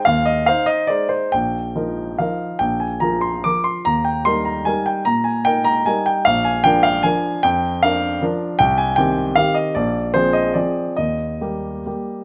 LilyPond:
\new Staff \with { instrumentName = "Grand piano" } { \time 3/4 \key ees \major \tempo 4 = 149 << { f''8 ees''8 f''8 ees''8 d''8 c''8 | g''2 f''4 | g''8 aes''8 bes''8 c'''8 d'''8 c'''8 | bes''8 g''8 c'''8 bes''8 aes''8 g''8 |
bes''8 aes''8 g''8 bes''8 aes''8 g''8 | f''8 aes''8 g''8 f''8 aes''4 | g''4 f''4 r4 | g''8 aes''8 g''4 f''8 ees''8 |
d''4 c''8 ees''8 d''4 | ees''2. | } \\ { ees,4 <ees' c''>4 <aes ees' c''>4 | bes,,4 <f ees' bes'>4 <f ees' bes'>4 | bes,,4 <f f' bes'>4 <f f' bes'>4 | ees,4 <g ees' bes'>4 <g ees' bes'>4 |
bes,4 <ees' bes'>4 <g ees' bes'>4 | bes,,4 <f d' bes'>4 <f d' bes'>4 | f,4 <d' bes'>4 <f d' bes'>4 | c,4 <ees c' g'>4 <ees c' g'>4 |
bes,,4 <f c' aes'>4 <f c' aes'>4 | ees,4 <g bes g'>4 <g bes g'>4 | } >> }